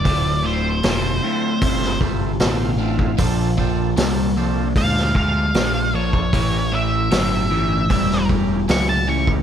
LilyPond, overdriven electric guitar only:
\new Staff \with { instrumentName = "Overdriven electric guitar" } { \clef bass \time 4/4 \key d \minor \tempo 4 = 76 <d, a,>8 <d, a,>8 <d, b,>8 <d, a,>8 <d, c>8 <d, c>8 <d, b,>8 <d, a,>8 | <bes, f>8 <bes, f>8 <bes, g>8 <bes, f>8 <bes, gis>8 <bes, gis>8 <bes, g>8 <bes, f>8 | <a, e>8 <a, e>8 <a, fis>8 <a, e>8 <a, g>8 <a, g>8 <a, fis>8 <a, e>8 | }